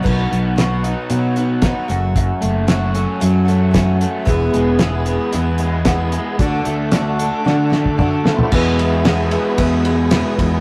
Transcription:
0.02 fingered electric bass B1, twelve-string acoustic guitar B2 F#3 B3 D#4 F#4, kick, crash
0.31 fingered electric bass B1, overdriven electric guitar B3, closed hi-hat
0.56 twelve-string acoustic guitar F#3 B3 D#4 F#4, snare, closed hi-hat
0.84 twelve-string acoustic guitar B3 D#4 F#4, closed hi-hat
1.10 fingered electric bass B2, twelve-string acoustic guitar F#3 B3 D#4 F#4, closed hi-hat
1.36 twelve-string acoustic guitar B3 D#4 F#4, closed hi-hat
1.61 twelve-string acoustic guitar F#3 B3 D#4 F#4, kick, snare, closed hi-hat
1.88 fingered electric bass F#1, twelve-string acoustic guitar F#2 C#3 F#3 A3 C#4 F#4, closed hi-hat
2.16 overdriven electric guitar F#2, kick, closed hi-hat
2.41 fingered electric bass F#1, overdriven electric guitar A3, closed hi-hat
2.67 twelve-string acoustic guitar F#3 A3 C#4 F#4, snare, closed hi-hat
2.94 twelve-string acoustic guitar F#3 A3 C#4 F#4, closed hi-hat
3.20 fingered electric bass F#2, twelve-string acoustic guitar F#3 A3 C#4 F#4, closed hi-hat
3.45 twelve-string acoustic guitar F#3 A3 C#4 F#4, closed hi-hat
3.71 twelve-string acoustic guitar F#3 A3 C#4 F#4, kick, snare, closed hi-hat
4.01 overdriven electric guitar A3, closed hi-hat
4.25 fingered electric bass E1, twelve-string acoustic guitar E2 B2 E3 G#3 B3 G#4, tonewheel organ B3 E4 G#4, grand piano G#4 B4 E5, kick, closed hi-hat
4.53 fingered electric bass E1, overdriven electric guitar G#3, closed hi-hat
4.79 twelve-string acoustic guitar E3 G#3 B3 G#4, grand piano G#4 B4 E5, snare, closed hi-hat
5.05 twelve-string acoustic guitar E3 G#3 B3 G#4, closed hi-hat
5.32 fingered electric bass E2, twelve-string acoustic guitar E3 G#3 B3 G#4, grand piano G#4 B4 E5, closed hi-hat
5.58 twelve-string acoustic guitar B3 G#4, closed hi-hat
5.62 twelve-string acoustic guitar E3 G#3
5.85 twelve-string acoustic guitar E3 G#3, overdriven electric guitar B3, grand piano G#4 B4 F#5, kick, snare, closed hi-hat
5.89 twelve-string acoustic guitar B3 G#4
6.12 overdriven electric guitar G#3, closed hi-hat
6.38 fingered electric bass D2, twelve-string acoustic guitar D3 A3 D4, tonewheel organ D4 F#4 A4, grand piano F#4 A4 D5, kick, closed hi-hat
6.42 twelve-string acoustic guitar F#4
6.65 fingered electric bass D2, overdriven electric guitar A3, closed hi-hat
6.91 twelve-string acoustic guitar D3 A3, overdriven electric guitar F#4, grand piano F#4 A4 D5, snare, closed hi-hat
6.95 twelve-string acoustic guitar D4 F#4
7.19 twelve-string acoustic guitar A3 D4 F#4, closed hi-hat
7.45 twelve-string acoustic guitar D3 A3 D4 F#4, fingered electric bass D3, grand piano F#4 A4 D5, snare
7.70 twelve-string acoustic guitar A3 D4 F#4, snare
7.86 kick
7.98 twelve-string acoustic guitar D3 A3 D4 F#4, grand piano F#4 A4 D5, kick, mid tom
8.22 tonewheel organ A3 B3, overdriven electric guitar A3, snare
8.27 tonewheel organ C4 D4
8.32 tonewheel organ E4 F4
8.39 tonewheel organ G4 A4, floor tom
8.43 tonewheel organ B4 C5
8.50 twelve-string acoustic guitar E2 B2 E3 G#3 G#4, fingered electric bass E2, tonewheel organ B3 E4 G#4 D5, grand piano G#4 B4 E5, kick, crash
8.54 twelve-string acoustic guitar B3, overdriven electric guitar E4
8.77 twelve-string acoustic guitar E3 G#3 B3 G#4, ride
9.04 twelve-string acoustic guitar E2 B2 E3 G#3 B3 G#4, grand piano G#4 B4 E5, snare, ride
9.31 overdriven electric guitar E2 B2 E3 G#3 B3 E4, grand piano G#4 B4 E5, ride
9.57 fingered electric bass E2, twelve-string acoustic guitar E3 G#3 B3 G#4, grand piano G#4 B4 E5, kick, ride
9.84 twelve-string acoustic guitar E3 G#3 B3 G#4, ride
10.09 twelve-string acoustic guitar E2 B2 E3 G#3 B3 G#4, grand piano G#4 B4 E5, snare, ride
10.37 fingered electric bass E2, twelve-string acoustic guitar E3 G#3 B3 G#4, kick, ride

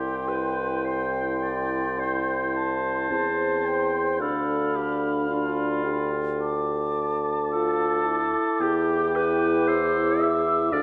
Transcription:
Already playing: bassoon C2, french horn E4, clarinet G4, oboe G5, flute C6
0.28 clarinet B4
0.85 clarinet C5, flute C6
1.42 clarinet D5
1.99 french horn E4, clarinet C5, oboe G5
2.56 oboe A5
3.11 bassoon E2, french horn C4, oboe A5, flute C6
3.65 oboe G5
4.20 bassoon D2, french horn D4, clarinet A4, oboe F5, flute B5
4.75 clarinet G4
5.29 french horn D4, clarinet F4
5.85 french horn G4
6.41 oboe A5, flute D6
7.49 french horn F4, clarinet A4, flute D6
8.05 french horn E4
8.60 bassoon E2, clarinet G4, oboe G5
9.16 clarinet B4
9.68 clarinet C5, oboe E5
10.20 clarinet E5
10.72 bassoon D2, french horn D4, clarinet D5, oboe F5

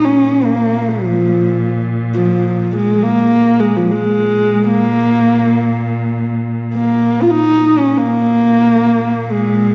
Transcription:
Already playing: cello A#2
0.04 horsehead fiddle C#4
0.45 horsehead fiddle A#3
0.89 horsehead fiddle F3
2.13 horsehead fiddle F3
2.76 horsehead fiddle G#3
3.03 horsehead fiddle A#3
3.60 horsehead fiddle G#3
3.77 horsehead fiddle F3
3.85 cello A#2
3.91 horsehead fiddle G#3
4.68 horsehead fiddle A#3
6.74 horsehead fiddle A#3
7.22 horsehead fiddle F4
7.30 horsehead fiddle D#4
7.78 horsehead fiddle C#4
7.97 cello A#2, horsehead fiddle A#3
9.32 horsehead fiddle G#3

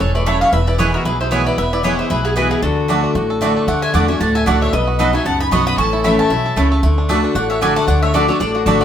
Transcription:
Already playing: five-string banjo C#4 E4
0.00 upright bass E1, steel-string acoustic guitar G#2, fiddle A4, five-string banjo A4, mandolin C#5
0.15 five-string banjo A3, fiddle B4, mandolin D5
0.26 steel-string acoustic guitar F#2, mandolin A3 E4 C#5 E5 A5, five-string banjo E4, fiddle C#5
0.41 five-string banjo E3, fiddle C#5, mandolin F5
0.52 upright bass E1, steel-string acoustic guitar E2, five-string banjo E4, fiddle B4, mandolin E5
0.67 five-string banjo E4, fiddle B4, mandolin D5
0.78 steel-string acoustic guitar E3 G#3 B3 E4, mandolin B3 E4 B4 C#5 G#5, five-string banjo B3, fiddle G#4
0.94 five-string banjo E4, fiddle F#4, mandolin A#4
1.05 upright bass B1, steel-string acoustic guitar B2, five-string banjo E4, fiddle G#4, mandolin B4
1.20 five-string banjo E4, fiddle G#4, mandolin C5
1.31 steel-string acoustic guitar E3 G#3 B3 E4, mandolin B3 E4 B4 C#5 G#5, five-string banjo B3, fiddle G#4
1.46 five-string banjo E4, fiddle B4, mandolin D5
1.58 upright bass E1, five-string banjo B3, fiddle B4, mandolin E5
1.73 five-string banjo E4, fiddle B4, mandolin D5
1.83 steel-string acoustic guitar E3 G#3 B3 E4, mandolin B3 E4 B4 C#5 G#5, five-string banjo E4, fiddle G#4
1.98 five-string banjo E4, fiddle G#4, mandolin C5
2.10 upright bass B1, steel-string acoustic guitar B2, five-string banjo E4, fiddle G#4, mandolin B4
2.25 five-string banjo B3, fiddle E4, mandolin G#4
2.36 steel-string acoustic guitar E3 G#3 B3 E4, mandolin B3 E4 F#4 B4 G#5, fiddle B3, five-string banjo E4
2.51 five-string banjo E3, fiddle E4, mandolin G#4
2.62 upright bass D2, steel-string acoustic guitar D3, five-string banjo D4, fiddle F#4, mandolin A4
2.88 steel-string acoustic guitar D3 A3 D4 F#4, mandolin A3 F#4 D5 A5, five-string banjo A3
3.04 five-string banjo D4
3.15 upright bass A1, steel-string acoustic guitar A2, five-string banjo F#4
3.30 five-string banjo A4
3.41 steel-string acoustic guitar D3 A3 D4 F#4, mandolin A3 F#4 D5 A5, five-string banjo A3
3.56 five-string banjo A4
3.67 upright bass D2, steel-string acoustic guitar D3, five-string banjo A3, fiddle D5, mandolin F#5
3.82 five-string banjo D4, fiddle E5, mandolin G#5
3.94 upright bass E2, steel-string acoustic guitar D3 A3 D4 F#4, mandolin A3 F#4 D5 F#5 A5, five-string banjo A3, fiddle D5
4.08 five-string banjo D4, steel-string acoustic guitar D4 F#4, fiddle E5, mandolin G#5
4.20 upright bass D2, steel-string acoustic guitar A2, five-string banjo F#4, fiddle F#5, mandolin A5
4.35 five-string banjo A4, fiddle E5, mandolin G#5
4.46 upright bass C#2, steel-string acoustic guitar D3 A3 D4 F#4, mandolin A3 F#4 D5 F#5 A5, five-string banjo F#4, fiddle D5
4.61 five-string banjo A4, fiddle C#5, mandolin E5
4.73 upright bass B1, steel-string acoustic guitar B2, five-string banjo B3, fiddle B4, mandolin D#5
4.87 five-string banjo F#4
4.99 steel-string acoustic guitar F#3 B3 D#4 F#4, mandolin B3 F#4 D#5 B5, five-string banjo A4
5.13 five-string banjo D#4, steel-string acoustic guitar D#4 F#4, fiddle E5, mandolin G#5
5.25 upright bass C#2, steel-string acoustic guitar F#2, five-string banjo B3, fiddle F#5, mandolin A5
5.40 five-string banjo D#4, fiddle G#5, mandolin B5
5.51 upright bass B1, steel-string acoustic guitar F#3 B3 D#4 F#4, mandolin B3 F#4 D#5 B5 C#6, five-string banjo B3, fiddle F#5
5.67 five-string banjo F#4, fiddle B5, mandolin D#6
5.78 upright bass A1, steel-string acoustic guitar A2, five-string banjo C#4, fiddle A5, mandolin C#6
5.93 five-string banjo E4
6.04 steel-string acoustic guitar E3 A3 C#4 E4, mandolin A3 E4 C#5 A5 B5, five-string banjo A3, fiddle E5
6.19 five-string banjo C#4, fiddle E5, mandolin A5
6.30 upright bass B1, steel-string acoustic guitar B2, five-string banjo E4
6.46 five-string banjo A4
6.56 upright bass C#2, steel-string acoustic guitar C#3, mandolin A3 E4 C#5 A5, five-string banjo A3
6.72 five-string banjo A4
6.83 upright bass D2, steel-string acoustic guitar D3, five-string banjo A3
6.98 five-string banjo D4
7.09 steel-string acoustic guitar D3 A3 D4 F#4, mandolin A3 F#4 D5 A5, five-string banjo A4
7.24 five-string banjo D4
7.35 upright bass A1, steel-string acoustic guitar A2, five-string banjo F#4, fiddle D5, mandolin F#5
7.50 five-string banjo A4, fiddle C#5, mandolin E5
7.61 steel-string acoustic guitar D3 A3 D4 F#4, mandolin A3 F#4 D5 G#5 A5, five-string banjo F#4, fiddle D5
7.76 five-string banjo A3, fiddle F#5, mandolin A5
7.87 upright bass D2, steel-string acoustic guitar D3, five-string banjo D4, fiddle D5, mandolin F#5
8.02 five-string banjo A3, fiddle C#5, mandolin E5
8.14 steel-string acoustic guitar D3 A3 D4 F#4, mandolin A3 F#4 D5 A5, five-string banjo F#4, fiddle A4
8.28 steel-string acoustic guitar D4 F#4, fiddle A4, five-string banjo A4, mandolin C#5
8.40 upright bass A1, steel-string acoustic guitar A2, five-string banjo D4, fiddle A4, mandolin D5
8.55 fiddle D4, mandolin F#4, five-string banjo F#4
8.66 upright bass G#1, steel-string acoustic guitar D3 A3 D4 F#4, mandolin A3 F#4 A4 D5 A5, fiddle F#4, five-string banjo A4
8.81 five-string banjo F#4, fiddle B4, mandolin D5

